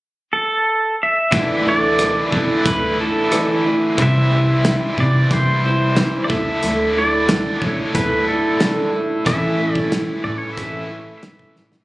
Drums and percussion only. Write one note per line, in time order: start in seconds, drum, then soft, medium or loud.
1.32 kick medium
1.32 closed hi-hat medium
1.99 cross-stick medium
1.99 closed hi-hat medium
2.32 kick medium
2.66 kick loud
2.66 closed hi-hat medium
3.32 cross-stick medium
3.32 closed hi-hat soft
3.98 kick medium
3.98 closed hi-hat soft
4.65 snare loud
4.65 closed hi-hat medium
4.98 kick medium
5.31 kick loud
5.31 closed hi-hat medium
5.96 snare medium
5.96 closed hi-hat soft
6.30 kick loud
6.63 closed hi-hat medium
7.29 snare loud
7.29 closed hi-hat medium
7.62 kick medium
7.95 kick loud
7.95 closed hi-hat medium
8.60 snare medium
8.60 closed hi-hat medium
9.26 kick medium
9.26 closed hi-hat medium
9.75 kick medium
9.92 snare loud
9.92 closed hi-hat medium
10.58 kick loud
10.58 closed hi-hat medium
11.23 snare loud
11.23 closed hi-hat medium
11.39 kick medium
11.56 snare soft
11.72 snare medium